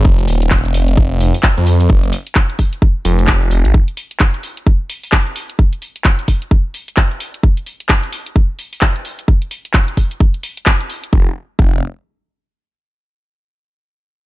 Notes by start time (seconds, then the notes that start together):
0.05 F1, kick, shaker
0.19 closed hi-hat
0.28 D#1, open hi-hat, shaker
0.42 closed hi-hat, shaker
0.51 kick, clap, shaker
0.65 F1, closed hi-hat
0.74 open hi-hat, shaker
0.88 closed hi-hat, shaker
0.97 F1, kick, shaker
1.20 open hi-hat, shaker
1.34 open hi-hat, shaker
1.43 kick, clap, shaker
1.57 F2, closed hi-hat
1.67 open hi-hat, shaker
1.80 closed hi-hat, shaker
1.90 F#1, kick, shaker
2.04 closed hi-hat
2.13 open hi-hat, shaker
2.27 closed hi-hat, shaker
2.35 kick, clap, shaker
2.50 closed hi-hat
2.59 kick, open hi-hat, shaker
2.72 closed hi-hat, shaker
2.81 kick, shaker
3.05 F1, open hi-hat, shaker
3.19 closed hi-hat, shaker
3.27 kick, clap, shaker
3.42 closed hi-hat
3.51 F1, open hi-hat, shaker
3.65 G#1, closed hi-hat, shaker
3.74 kick
3.88 closed hi-hat
3.97 open hi-hat
4.11 closed hi-hat
4.20 kick, clap
4.34 closed hi-hat
4.43 open hi-hat
4.57 closed hi-hat
4.67 kick
4.90 open hi-hat
5.03 open hi-hat
5.12 kick, clap
5.27 closed hi-hat
5.36 open hi-hat
5.50 closed hi-hat
5.59 kick
5.73 closed hi-hat
5.82 open hi-hat
5.96 closed hi-hat
6.04 kick, clap
6.19 closed hi-hat
6.28 kick, open hi-hat
6.42 closed hi-hat
6.51 kick
6.74 open hi-hat
6.88 closed hi-hat
6.97 kick, clap
7.11 closed hi-hat
7.20 open hi-hat
7.34 closed hi-hat
7.43 kick
7.57 closed hi-hat
7.66 open hi-hat
7.80 closed hi-hat
7.89 kick, clap
8.03 closed hi-hat
8.13 open hi-hat
8.26 closed hi-hat
8.36 kick
8.59 open hi-hat
8.73 open hi-hat
8.81 kick, clap
8.96 closed hi-hat
9.05 open hi-hat
9.19 closed hi-hat
9.28 kick
9.42 closed hi-hat
9.51 open hi-hat
9.65 closed hi-hat
9.74 kick, clap
9.88 closed hi-hat
9.97 kick, open hi-hat
10.11 closed hi-hat
10.20 kick
10.34 closed hi-hat
10.43 open hi-hat
10.57 closed hi-hat
10.66 kick, clap
10.81 closed hi-hat
10.90 open hi-hat
11.04 closed hi-hat
11.13 F1, kick
11.59 F1, kick